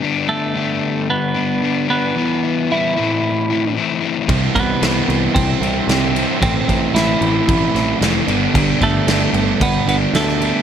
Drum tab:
CC |----------------|----------------|x-x-x-x-x-x-x-x-|x-x-x-x-x-x-x-x-|
SD |----------------|----------------|----o-------o---|----o-----o-o---|
BD |----------------|----------------|o-o-----o-------|o-o-----o-------|

CC |x-x-x-x-x-x-x-x-|
SD |----o-------oo--|
BD |o-o-----o-------|